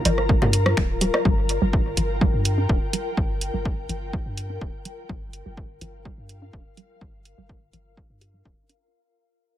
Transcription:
Already playing: ambient pad F4 A#4 A#5
0.05 sub bass G1, synth arpeggio sound F3, closed hi-hat, low woodblock
0.18 cross-stick
0.29 synth arpeggio sound G3, kick
0.42 sub bass G2, cowbell, low conga
0.53 closed hi-hat
0.66 synth arpeggio sound G3, cross-stick
0.77 sub bass D1, synth arpeggio sound G3, finger snap, kick
1.01 synth arpeggio sound G3, closed hi-hat
1.14 cross-stick, low woodblock
1.25 sub bass G1, synth arpeggio sound G3, kick
1.49 closed hi-hat
1.62 sub bass G1, synth arpeggio sound G3
1.73 ambient pad G5, kick
1.97 sub bass G1, synth arpeggio sound F3, closed hi-hat
2.21 synth arpeggio sound G3, kick
2.34 sub bass G2
2.45 closed hi-hat
2.58 synth arpeggio sound D4
2.69 sub bass D1, kick
2.93 synth arpeggio sound G3, closed hi-hat
3.17 sub bass G1, synth arpeggio sound G3, kick
3.41 closed hi-hat
3.54 sub bass G1, synth arpeggio sound G3
3.65 kick
3.89 sub bass G1, synth arpeggio sound F3, closed hi-hat
4.13 synth arpeggio sound G3, kick
4.26 sub bass G2
4.37 closed hi-hat
4.50 synth arpeggio sound D4
4.61 sub bass D1, kick
4.85 synth arpeggio sound G3, closed hi-hat
5.09 sub bass G1, synth arpeggio sound G3, kick
5.33 closed hi-hat
5.46 sub bass G1, synth arpeggio sound G3
5.57 ambient pad F5, kick
5.81 sub bass G1, synth arpeggio sound F3, closed hi-hat
6.05 synth arpeggio sound G3, kick
6.18 sub bass G2
6.29 closed hi-hat
6.42 synth arpeggio sound D4
6.53 sub bass D1, kick
6.77 synth arpeggio sound G3, closed hi-hat
7.01 sub bass G1, synth arpeggio sound G3, kick
7.25 closed hi-hat
7.38 sub bass G1, synth arpeggio sound G3
7.49 kick
7.73 sub bass G1, synth arpeggio sound F3, closed hi-hat
7.97 synth arpeggio sound G3, kick
8.10 sub bass G2
8.21 synth arpeggio sound G4, closed hi-hat
8.34 synth arpeggio sound G3
8.45 sub bass D1, synth arpeggio sound D4, kick
8.69 synth arpeggio sound D4, closed hi-hat

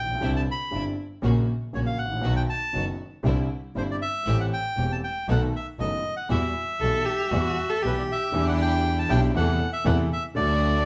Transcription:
Already playing: double bass A#1, bandoneon G5
0.03 grand piano A1
0.10 grand piano A#1
0.15 grand piano B1
0.21 grand piano C2 C3 D3 G3 C4 E4, double bass C2, string section C4 D4 E4
0.36 bandoneon A5
0.51 bandoneon B5
0.71 grand piano G1 G2 D3 G3 C4 E4, double bass G1, string section C4 D4 E4
1.22 grand piano A#1 A#2 C#3 F#3 A#3 F#4, double bass A#1, string section A#3 C#4 F#4
1.73 grand piano A#1 A#2 C#3 F#3 A#3 F#4, double bass A#1, string section A#3 C#4 F#4, bandoneon C#5
1.86 bandoneon F5
1.98 double bass A1, bandoneon F#5
2.05 grand piano G#1
2.11 grand piano A1
2.16 grand piano A#1
2.21 grand piano B1 B2 D#3 F#3 B3 F#4, double bass B1, string section B3 D#4 F#4
2.37 bandoneon G5
2.49 bandoneon A5
2.73 grand piano F#1 F#2 D#3 F#3 B3 F#4, double bass F#1, string section B3 D#4 F#4
3.23 grand piano C2 C3 D3 G3 C4 E4, double bass C2, string section C4 D4 E4
3.75 grand piano G1 G2 D3 G3 C4 E4, double bass G1, string section C4 D4 E4, bandoneon C5
3.91 bandoneon D5
4.02 bandoneon E5
4.25 double bass A1, grand piano A1 A2 E3 A3 C4 G4, string section A3 C4 G4
4.40 bandoneon F#5
4.53 bandoneon G5
4.76 double bass E1, grand piano E1 E2 E3 A3 C4 G4, string section A3 C4 G4
4.92 bandoneon A5
5.04 bandoneon G5
5.28 grand piano B1 B2 D#3 A3 B3 F#4, double bass B1, string section B3 D#4 A4, bandoneon F#5
5.56 bandoneon E5
5.79 grand piano F#1 F#2 D#3 A3 B3 F#4, double bass F#1, string section B3 D#4 A4, bandoneon D#5
6.17 bandoneon F#5
6.29 grand piano E2 E3 G3 B3 F#4, double bass E2, string section G3 E4 F#4, bandoneon E5
6.80 double bass B1, grand piano B1 B2 E3 G3 B3 F#4, string section G3 E4 F#4, cello A4
7.06 cello G4
7.31 double bass E2, grand piano E2 E3 G3 B3 F#4, string section G3 E4 F#4, cello F#4
7.70 cello A4
7.82 double bass B1, grand piano B1 B2 E3 G3 B3 F#4, string section G3 E4 F#4, cello G4, bandoneon B4
7.98 bandoneon D5
8.12 bandoneon E5
8.32 double bass E2, grand piano E2 D3 E3 G3 B3 E4, string section D4 E4 G4
8.48 bandoneon F#5
8.61 bandoneon G5
8.99 bandoneon A5
9.09 grand piano B1 B2 D3 G3 B3 E4, double bass B1, string section D4 E4 G4, bandoneon G5
9.34 grand piano E2 C3 E3 A3 B3 E4, double bass E2, string section B3 C4 A4, bandoneon F#5
9.73 bandoneon E5
9.84 grand piano E2 C3 E3 A3 B3 E4, double bass E2, string section B3 C4 A4, bandoneon F#5
10.13 bandoneon E5
10.35 double bass D2, grand piano D2 D3 F#3 A3, string section A3 D4 F#4, bandoneon D5
10.39 grand piano F#4

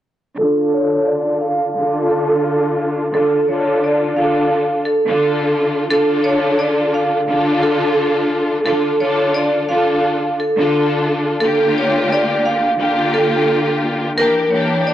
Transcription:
0.37 string section D3 D4 F4 A4, vibraphone A4
0.74 vibraphone C#5
1.07 vibraphone D5
1.41 vibraphone F5
1.75 string section D3 D4 F4 A4
2.10 vibraphone A4
3.12 string section D3 D4 F4 A4, vibraphone A4
3.47 string section D3 D4 F4 A4, vibraphone C#5
3.84 vibraphone D5
4.16 string section D3 D4 F4 A4, vibraphone F5
4.85 vibraphone A4
5.06 string section D3 D4 F4 A4
5.88 string section D3 D4 F4 A4, vibraphone A4
6.24 vibraphone C#5
6.59 vibraphone D5
6.94 vibraphone F5
7.26 string section D3 D4 F4 A4
7.63 vibraphone A4
8.64 string section D3 D4 F4 A4, vibraphone A4
8.99 string section D3 D4 F4 A4, vibraphone C#5
9.34 vibraphone D5
9.68 string section D3 D4 F4 A4, vibraphone F5
10.40 vibraphone A4
10.57 string section D3 D4 F4 A4
11.41 string section D3 A#3 F4 G4, vibraphone A4
11.78 vibraphone C#5
12.12 vibraphone D5
12.46 vibraphone F5
12.77 string section D3 A#3 F4 G4
13.14 vibraphone A4
14.16 string section E3 A#3 D4 G4, vibraphone A#4
14.50 string section E3 A#3 D4 G4, vibraphone C#5
14.87 vibraphone D5

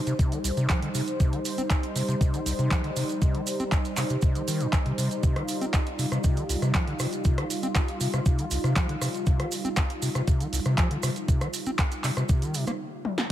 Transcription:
Already playing: analog synth pad G3 D#4 C5
0.07 acid bass C3, closed hi-hat, maracas
0.19 acid bass C3, kick, closed hi-hat, maracas
0.32 acid bass D#3, closed hi-hat, maracas
0.44 acid bass C2, open hi-hat, maracas
0.57 acid bass C3, closed hi-hat, maracas
0.69 acid bass F3, kick, clap, closed hi-hat, maracas
0.82 acid bass D3, closed hi-hat
0.95 acid bass C3, open hi-hat, maracas
1.07 closed hi-hat, maracas
1.20 acid bass C3, kick, closed hi-hat, maracas
1.33 acid bass D#3, closed hi-hat
1.45 open hi-hat, maracas
1.58 acid bass C4, closed hi-hat, maracas
1.70 kick, clap, closed hi-hat, maracas
1.83 closed hi-hat
1.96 acid bass C3, open hi-hat, maracas
2.09 acid bass C3, closed hi-hat, maracas
2.21 acid bass C3, kick, closed hi-hat, maracas
2.34 acid bass D#3, closed hi-hat, maracas
2.46 acid bass C2, open hi-hat, maracas
2.59 acid bass C3, closed hi-hat, maracas
2.71 acid bass F3, kick, clap, closed hi-hat, maracas
2.84 acid bass D3, closed hi-hat
2.96 acid bass C3, open hi-hat, maracas
3.09 closed hi-hat, maracas
3.22 acid bass C3, kick, closed hi-hat, maracas
3.35 acid bass D#3, closed hi-hat
3.47 open hi-hat, maracas
3.60 acid bass C4, closed hi-hat, maracas
3.72 kick, clap, closed hi-hat, maracas
3.85 closed hi-hat, maracas
3.97 acid bass C3, clap, open hi-hat, maracas
4.10 acid bass C3, closed hi-hat, maracas
4.22 acid bass C3, kick, closed hi-hat, maracas
4.35 acid bass D#3, closed hi-hat, maracas
4.48 acid bass D#3, open hi-hat, maracas
4.60 acid bass A#2, closed hi-hat, maracas
4.73 acid bass D#3, kick, clap, closed hi-hat, maracas
4.86 acid bass C3, closed hi-hat
4.98 acid bass C3, open hi-hat, maracas
5.11 closed hi-hat, maracas
5.23 acid bass C3, analog synth pad F4, kick, closed hi-hat, maracas
5.36 acid bass D#3, cross-stick, closed hi-hat
5.48 open hi-hat, maracas
5.61 acid bass C4, closed hi-hat, maracas
5.74 kick, cross-stick, clap, closed hi-hat, maracas
5.87 closed hi-hat
5.99 acid bass C3, open hi-hat, maracas
6.12 acid bass C3, cross-stick, closed hi-hat, maracas
6.24 acid bass C3, kick, closed hi-hat, maracas
6.37 acid bass D#3, closed hi-hat, maracas
6.49 acid bass C2, open hi-hat, maracas
6.62 acid bass C3, cross-stick, closed hi-hat, maracas
6.75 acid bass F3, kick, clap, closed hi-hat, maracas
6.88 acid bass D3, closed hi-hat
6.99 acid bass C3, cross-stick, open hi-hat, maracas
7.13 closed hi-hat, maracas
7.24 acid bass C3, kick, closed hi-hat, maracas
7.38 acid bass D#3, cross-stick, closed hi-hat
7.50 open hi-hat, maracas
7.63 acid bass C4, closed hi-hat, maracas
7.75 kick, cross-stick, clap, closed hi-hat, maracas
7.88 closed hi-hat
8.01 acid bass C3, open hi-hat, maracas
8.13 acid bass C3, cross-stick, closed hi-hat, maracas
8.26 acid bass C3, kick, closed hi-hat, maracas
8.39 acid bass D#3, closed hi-hat, maracas
8.51 acid bass C2, open hi-hat, maracas
8.64 acid bass C3, cross-stick, closed hi-hat, maracas
8.76 acid bass F3, kick, clap, closed hi-hat, maracas
8.89 acid bass D3, closed hi-hat
9.02 acid bass C3, cross-stick, open hi-hat, maracas
9.14 closed hi-hat, maracas
9.26 acid bass C3, kick, closed hi-hat, maracas
9.40 acid bass D#3, cross-stick, closed hi-hat
9.52 open hi-hat, maracas
9.65 acid bass C4, closed hi-hat, maracas
9.76 kick, cross-stick, clap, closed hi-hat, maracas
9.90 closed hi-hat
10.02 acid bass C3, open hi-hat, maracas
10.15 acid bass C3, cross-stick, closed hi-hat, maracas
10.28 acid bass C3, kick, closed hi-hat, maracas
10.40 acid bass D#3, closed hi-hat, maracas
10.53 acid bass C2, open hi-hat, maracas
10.65 acid bass C3, cross-stick, closed hi-hat, maracas
10.78 acid bass F3, kick, clap, closed hi-hat, maracas
10.91 acid bass D3, closed hi-hat
11.03 acid bass C3, cross-stick, open hi-hat, maracas
11.16 closed hi-hat, maracas
11.28 acid bass C3, kick, closed hi-hat, maracas
11.41 acid bass D#3, cross-stick, closed hi-hat, maracas
11.54 open hi-hat, maracas
11.66 acid bass C4, closed hi-hat, maracas
11.79 kick, cross-stick, clap, closed hi-hat, maracas
11.92 closed hi-hat, maracas
12.04 acid bass C3, clap, open hi-hat, maracas
12.17 acid bass C3, cross-stick, closed hi-hat, maracas
12.29 acid bass C3, kick, closed hi-hat, maracas
12.42 acid bass D#3, closed hi-hat, maracas
12.54 acid bass C3, open hi-hat, maracas
12.67 acid bass A#3, cross-stick, closed hi-hat, maracas
13.05 high tom
13.18 snare

